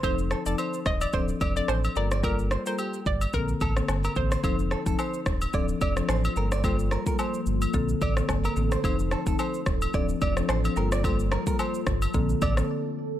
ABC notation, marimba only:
X:1
M:4/4
L:1/16
Q:"Swing 16ths" 1/4=109
K:Bb
V:1 name="Marimba"
[F,CEA]2 z [F,CEA] z4 [F,CDA]2 z [F,CDA] z2 [G,B,FA]2 | [G,B,FA]2 z [G,B,FA] z4 [D,B,CA]2 z [D,B,CA] z2 [D,B,CA]2 | [F,CEA]2 z [F,CEA] z4 [F,CDA]2 z [F,CDA] z2 [G,B,FA]2 | [G,B,FA]2 z [G,B,FA] z4 [D,B,CA]2 z [D,B,CA] z2 [D,B,CA]2 |
[F,CEA]2 z [F,CEA] z4 [F,CDA]2 z [F,CDA] z [F,CDA] [G,B,FA]2 | [G,B,FA]2 z [G,B,FA] z4 [D,B,CA]2 z [D,B,CA] z4 |]